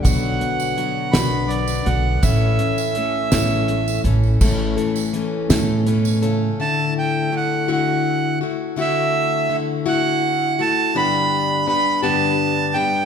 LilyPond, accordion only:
\new Staff \with { instrumentName = "Accordion" } { \time 6/8 \key d \major \tempo 4. = 55 fis''4. b''8 d''8 fis''8 | e''2~ e''8 r8 | r2. | a''8 g''8 fis''8 fis''4 r8 |
e''4 r8 fis''4 a''8 | b''4 b''8 a''4 g''8 | }